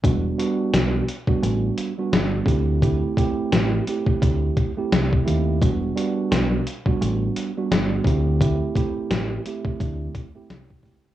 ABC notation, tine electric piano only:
X:1
M:4/4
L:1/16
Q:"Swing 16ths" 1/4=86
K:Em
V:1 name="Tine electric piano"
[G,B,DF]2 [G,B,DF]4 z [G,B,DF]4 [G,B,DF]3 [A,CEG]2 | [A,CEG]2 [A,CEG]4 [A,CEG]4- [A,CEG] [A,CEG]3 [A,CEG]2 | [G,B,DF]2 [G,B,DF]4 z [G,B,DF]4 [G,B,DF]3 [A,CEG]2 | [A,CEG]2 [A,CEG]4 [A,CEG]4- [A,CEG] [A,CEG]3 [A,CEG]2 |]